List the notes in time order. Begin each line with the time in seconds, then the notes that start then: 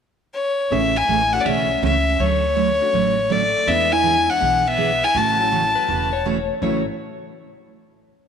0.34 C#5
0.70 A1 C#3 E3 A3 C#4 E4 G#4 E5
0.96 E4 G#5
1.08 A1 C#3 E3 A3 C#4 G#4
1.32 A3 C#4 D4 E4 F#4 F#5
1.40 B3 D5
1.45 B1 C#3 E3 A3 C#4 G#4 E5
1.82 C#2 C#3 E3 A3 C#4 G#4 E5
2.19 D2 D3 F#3 A3 C#4 F#4 C#5
2.56 D3 F#3 A3 C#4 F#4
2.80 A3 C#4 D4 F#4
2.93 A1 D3 F#3 A3 C#4 F#4
3.30 D3 F#3 A3 C#4 F#4 D5
3.67 E2 E3 G#3 B3 D4 E4 G#4 E5
3.93 E4 G#5
4.03 E3 B3 D4 G#4
4.30 D4 F#5
4.40 B1 E3 B3 D4 G#4
4.67 B3 E5
4.78 E3 B3 D4 G#4
5.04 E4 G#5
5.15 A1 C#3 E3 A3 C#4 F#4 A5
5.39 F#3 A3 C#4 E4
5.52 C#3 E3 A3 C#4 F#4
5.75 B4
5.88 E1 C#3 E3 A3 C#4 F#4
6.13 C#5
6.25 C#3 E3 A3 C#4 F#4
6.61 A1 A2 C#3 E3 F#3 A3 C#4 E4 F#4 C#5